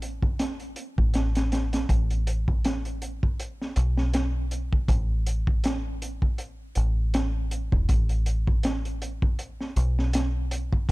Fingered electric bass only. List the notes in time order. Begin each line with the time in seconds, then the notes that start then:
Already playing: A1
0.98 A1
1.89 A1
3.77 B1
4.89 A1
6.77 A1
7.73 E1
7.89 A1
9.77 B1